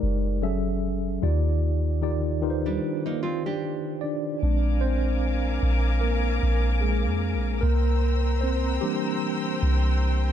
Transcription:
Already playing: G#3 D#4 G4 A#4 C5 D5
0.03 F#1
0.42 F#3 C#4 G#4 A4 E5
1.22 D#2 D#3 D#4 F4 G4 D5
2.02 D#3 D#4 F4 G4 D5
2.42 D#3 D#4 F4 G4 B4
2.50 C5
2.66 G3 D4
3.06 A#3 D#4
3.23 C4 F4
3.46 D4 G4
4.01 D4 D5
4.42 A#1 G#3 C4 D4 A#4 F5 G#5 D6
4.81 C4 C5
5.63 A#1
6.01 A#3 A#4
6.43 A#1
6.81 G#3 G#4
7.06 F2
7.34 A#1
7.61 C2 A#3 A#4 C5 G5 A#5 E6
8.41 C4 C5
8.81 E3 G3 A#3 D4 G4
9.63 C2

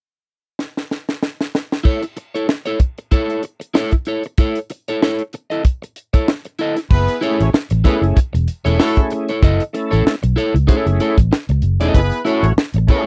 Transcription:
0.59 snare
0.77 snare
0.91 snare
1.09 snare
1.23 snare
1.41 snare
1.55 snare
1.72 snare
1.84 E4 A4 C#5, kick, crash
2.03 muted clean electric guitar stroke, closed hi-hat
2.17 muted clean electric guitar stroke, closed hi-hat
2.35 E4 A4 C#5, closed hi-hat
2.48 muted clean electric guitar stroke, snare
2.66 E4 A4 C#5, closed hi-hat
2.80 muted clean electric guitar stroke, kick, closed hi-hat
2.98 muted clean electric guitar stroke, closed hi-hat
3.11 E4 A4 C#5, kick, closed hi-hat
3.30 closed hi-hat
3.43 muted clean electric guitar stroke, closed hi-hat
3.60 muted clean electric guitar stroke, closed hi-hat
3.74 E4 A4 C#5, snare
3.91 muted clean electric guitar stroke, kick, closed hi-hat
4.05 E4 A4 C#5, closed hi-hat
4.23 muted clean electric guitar stroke, closed hi-hat
4.38 E4 A4 C#5, kick, closed hi-hat
4.55 closed hi-hat
4.70 muted clean electric guitar stroke, closed hi-hat
4.88 E4 A4 C#5, closed hi-hat
5.02 E4 A4 C#5, snare
5.19 closed hi-hat
5.33 muted clean electric guitar stroke, closed hi-hat
5.50 E4 A4 D#5, closed hi-hat
5.63 muted clean electric guitar stroke, kick, closed hi-hat
5.82 muted clean electric guitar stroke, closed hi-hat
5.96 closed hi-hat
6.13 E4 A4 C#5, kick, closed hi-hat
6.28 snare
6.45 muted clean electric guitar stroke, closed hi-hat
6.59 E4 A4 D#5, closed hi-hat
6.76 muted clean electric guitar stroke, snare, closed hi-hat
6.91 F#1 B3 E4 G#4 B4, kick, crash
7.08 closed hi-hat
7.21 A3 C#4 E4 G#4 A4 C#5, closed hi-hat
7.40 A1 C#4 F#4 A4 C#5, closed hi-hat
7.54 muted fingered electric bass stroke, muted clean electric guitar stroke, snare
7.70 A1, muted clean electric guitar stroke, closed hi-hat
7.84 A3 B3 C#4 E4 G#4 A4 B4 C#5, kick, closed hi-hat
8.02 F#1, muted clean electric guitar stroke, closed hi-hat
8.16 muted clean electric guitar stroke, muted fingered electric bass stroke, kick, closed hi-hat
8.33 E1, muted clean electric guitar stroke, closed hi-hat
8.48 closed hi-hat
8.65 E1 A3 C#4 E4 G#4 A4 C#5, closed hi-hat
8.79 A3 E4 F#4 A4 C#5, snare
8.96 A3 C#4 E4 G#4, kick, closed hi-hat
9.10 muted clean electric guitar stroke, closed hi-hat
9.29 E4 A4 C#5, closed hi-hat
9.43 F#1 E4 A4 D#5, kick, closed hi-hat
9.60 closed hi-hat
9.73 A3 C#4 E4 A4, muted clean electric guitar stroke, closed hi-hat
9.91 A1 E4 A4 C#5, closed hi-hat
10.07 snare
10.23 B1, muted clean electric guitar stroke, closed hi-hat
10.36 E4 A4 C#5, closed hi-hat
10.54 C#2, muted clean electric guitar stroke, closed hi-hat
10.67 A3 C#4 E4 F#4 A4 C#5, kick, closed hi-hat
10.75 G#4
10.86 F#1, muted clean electric guitar stroke, closed hi-hat
11.00 E4 A4 C#5, closed hi-hat
11.18 A1, muted clean electric guitar stroke, kick, closed hi-hat
11.32 muted clean electric guitar stroke, snare
11.49 C#2, muted clean electric guitar stroke, closed hi-hat
11.62 F#1, closed hi-hat
11.79 E1 A3 C#4 E4 G#4 A4 D#5, snare, closed hi-hat
11.94 F#1 B3 E4 G#4 B4, kick, closed hi-hat
12.12 closed hi-hat
12.25 A3 C#4 E4 F#4 A4 C#5, closed hi-hat
12.43 A1 C#4 F#4 A4 C#5, closed hi-hat
12.58 muted clean electric guitar stroke, snare
12.74 A1, muted clean electric guitar stroke, closed hi-hat
12.87 A3 B3 C#4 E4 G#4 A4 B4, kick, closed hi-hat
12.92 C#5

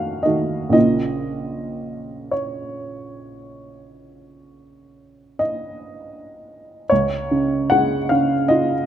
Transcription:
Already playing: D#3 A3 F#4 F5 F#5
0.23 D#3 A3 F#4 D#5
0.69 A#1 C#3 A#3 F4 D#5
2.31 C#5
5.39 D#5
6.89 C#2 C#5
7.31 C#3
7.70 G#3 F#5
8.09 C#3 F5
8.48 F4 D#5

